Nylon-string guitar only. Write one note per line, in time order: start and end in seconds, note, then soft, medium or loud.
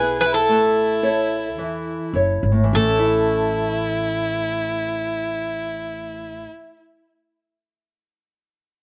0.00 0.38 B3 medium
0.00 0.38 E4 medium
0.00 0.39 G#4 medium
0.49 1.00 A3 medium
1.03 1.46 E4 medium
1.03 1.47 A4 medium
1.03 1.47 C#5 medium
1.58 2.13 E3 medium
2.14 2.62 E4 soft
2.14 2.62 A4 soft
2.14 2.63 C#5 medium
2.52 6.24 A2 medium
2.64 6.36 E3 medium
2.75 6.47 A3 medium
2.87 6.59 C#4 medium
2.99 6.71 E4 medium